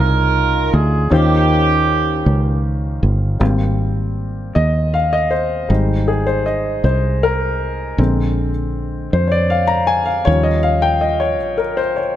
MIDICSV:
0, 0, Header, 1, 4, 480
1, 0, Start_track
1, 0, Key_signature, -4, "major"
1, 0, Tempo, 763359
1, 699, Time_signature, 6, 3, 24, 8
1, 7647, End_track
2, 0, Start_track
2, 0, Title_t, "Upright piano"
2, 0, Program_c, 0, 0
2, 0, Control_c, 0, 64, 127
2, 0, Note_on_c, 0, 49, 60
2, 0, Note_on_c, 0, 61, 57
2, 0, Note_on_c, 0, 63, 55
2, 0, Note_on_c, 0, 65, 55
2, 0, Note_on_c, 0, 68, 54
2, 0, Note_on_c, 0, 70, 65
2, 667, Note_off_c, 0, 61, 0
2, 668, Note_off_c, 0, 63, 0
2, 670, Note_off_c, 0, 65, 0
2, 671, Note_off_c, 0, 68, 0
2, 693, Note_on_c, 0, 61, 57
2, 695, Note_off_c, 0, 70, 0
2, 695, Note_on_c, 0, 63, 55
2, 700, Note_on_c, 0, 65, 54
2, 701, Note_on_c, 0, 51, 60
2, 704, Note_on_c, 0, 67, 49
2, 706, Control_c, 0, 64, 0
2, 706, Note_on_c, 0, 72, 63
2, 710, Note_off_c, 0, 49, 0
2, 827, Control_c, 0, 64, 127
2, 1395, Note_off_c, 0, 51, 0
2, 2112, Note_off_c, 0, 61, 0
2, 2113, Note_off_c, 0, 63, 0
2, 2116, Note_off_c, 0, 65, 0
2, 2118, Note_off_c, 0, 67, 0
2, 2119, Note_off_c, 0, 72, 0
2, 2135, Note_on_c, 0, 55, 43
2, 2139, Note_on_c, 0, 58, 43
2, 2144, Note_on_c, 0, 60, 50
2, 2149, Control_c, 0, 64, 0
2, 2240, Control_c, 0, 64, 127
2, 2833, Note_off_c, 0, 55, 0
2, 2835, Note_off_c, 0, 58, 0
2, 2837, Note_off_c, 0, 60, 0
2, 2862, Note_on_c, 0, 75, 79
2, 3104, Note_on_c, 0, 77, 81
2, 3108, Note_off_c, 0, 75, 0
2, 3224, Note_on_c, 0, 75, 84
2, 3226, Note_off_c, 0, 77, 0
2, 3336, Note_on_c, 0, 72, 73
2, 3346, Note_off_c, 0, 75, 0
2, 3576, Note_on_c, 0, 55, 49
2, 3578, Note_on_c, 0, 56, 44
2, 3582, Note_on_c, 0, 63, 51
2, 3589, Control_c, 0, 64, 0
2, 3716, Control_c, 0, 64, 127
2, 3821, Note_on_c, 0, 68, 68
2, 3833, Note_off_c, 0, 72, 0
2, 3933, Note_off_c, 0, 68, 0
2, 3940, Note_on_c, 0, 72, 74
2, 4052, Note_off_c, 0, 72, 0
2, 4061, Note_on_c, 0, 75, 69
2, 4273, Note_off_c, 0, 55, 0
2, 4274, Note_off_c, 0, 56, 0
2, 4276, Note_off_c, 0, 63, 0
2, 4303, Note_on_c, 0, 72, 74
2, 4308, Note_off_c, 0, 75, 0
2, 4548, Note_on_c, 0, 70, 86
2, 4549, Note_off_c, 0, 72, 0
2, 4999, Note_off_c, 0, 70, 0
2, 5019, Note_on_c, 0, 50, 52
2, 5021, Note_on_c, 0, 56, 43
2, 5025, Note_on_c, 0, 60, 54
2, 5029, Control_c, 0, 64, 0
2, 5146, Control_c, 0, 64, 127
2, 5338, Note_off_c, 0, 50, 0
2, 5339, Note_off_c, 0, 56, 0
2, 5342, Note_off_c, 0, 60, 0
2, 5742, Note_on_c, 0, 72, 77
2, 5832, Note_on_c, 0, 73, 59
2, 5833, Note_off_c, 0, 72, 0
2, 5858, Note_on_c, 0, 74, 81
2, 5860, Note_off_c, 0, 73, 0
2, 5974, Note_on_c, 0, 77, 82
2, 5982, Note_off_c, 0, 74, 0
2, 6083, Note_on_c, 0, 82, 84
2, 6100, Note_off_c, 0, 77, 0
2, 6207, Note_on_c, 0, 80, 88
2, 6215, Note_off_c, 0, 82, 0
2, 6323, Note_on_c, 0, 77, 75
2, 6336, Note_off_c, 0, 80, 0
2, 6445, Note_on_c, 0, 73, 86
2, 6449, Note_on_c, 0, 53, 54
2, 6453, Note_on_c, 0, 55, 43
2, 6455, Note_off_c, 0, 77, 0
2, 6459, Note_on_c, 0, 61, 58
2, 6467, Control_c, 0, 64, 0
2, 6561, Note_on_c, 0, 75, 77
2, 6575, Note_off_c, 0, 73, 0
2, 6592, Control_c, 0, 64, 127
2, 6684, Note_on_c, 0, 77, 86
2, 6693, Note_off_c, 0, 75, 0
2, 6804, Note_on_c, 0, 79, 85
2, 6814, Note_off_c, 0, 77, 0
2, 6924, Note_on_c, 0, 75, 68
2, 6934, Note_off_c, 0, 79, 0
2, 7041, Note_off_c, 0, 75, 0
2, 7041, Note_on_c, 0, 73, 78
2, 7147, Note_off_c, 0, 53, 0
2, 7149, Note_off_c, 0, 55, 0
2, 7152, Note_off_c, 0, 61, 0
2, 7279, Note_on_c, 0, 70, 69
2, 7296, Note_off_c, 0, 73, 0
2, 7401, Note_on_c, 0, 72, 79
2, 7411, Note_off_c, 0, 70, 0
2, 7522, Note_on_c, 0, 73, 63
2, 7532, Note_off_c, 0, 72, 0
2, 7647, Note_off_c, 0, 73, 0
2, 7647, End_track
3, 0, Start_track
3, 0, Title_t, "Horn section"
3, 0, Program_c, 1, 61
3, 0, Note_on_c, 1, 63, 60
3, 0, Note_on_c, 1, 65, 66
3, 0, Note_on_c, 1, 70, 81
3, 461, Note_off_c, 1, 70, 0
3, 467, Note_on_c, 1, 68, 82
3, 674, Note_off_c, 1, 65, 0
3, 675, Note_off_c, 1, 63, 0
3, 703, Note_off_c, 1, 68, 0
3, 709, Note_on_c, 1, 61, 55
3, 710, Note_on_c, 1, 58, 61
3, 712, Note_on_c, 1, 67, 75
3, 1640, Note_off_c, 1, 58, 0
3, 1640, Note_off_c, 1, 61, 0
3, 1641, Note_off_c, 1, 67, 0
3, 7647, End_track
4, 0, Start_track
4, 0, Title_t, "Fingered electric bass"
4, 0, Program_c, 2, 33
4, 0, Note_on_c, 2, 36, 80
4, 436, Note_off_c, 2, 36, 0
4, 462, Note_on_c, 2, 38, 87
4, 681, Note_off_c, 2, 38, 0
4, 701, Note_on_c, 2, 39, 89
4, 1395, Note_off_c, 2, 39, 0
4, 1423, Note_on_c, 2, 37, 76
4, 1876, Note_off_c, 2, 37, 0
4, 1904, Note_on_c, 2, 31, 79
4, 2123, Note_off_c, 2, 31, 0
4, 2142, Note_on_c, 2, 32, 97
4, 2836, Note_off_c, 2, 32, 0
4, 2867, Note_on_c, 2, 39, 80
4, 3559, Note_off_c, 2, 39, 0
4, 3583, Note_on_c, 2, 32, 87
4, 4277, Note_off_c, 2, 32, 0
4, 4300, Note_on_c, 2, 36, 71
4, 4995, Note_off_c, 2, 36, 0
4, 5020, Note_on_c, 2, 34, 92
4, 5714, Note_off_c, 2, 34, 0
4, 5741, Note_on_c, 2, 41, 82
4, 6434, Note_off_c, 2, 41, 0
4, 6459, Note_on_c, 2, 39, 95
4, 7176, Note_off_c, 2, 39, 0
4, 7176, Note_on_c, 2, 34, 69
4, 7647, Note_off_c, 2, 34, 0
4, 7647, End_track
0, 0, End_of_file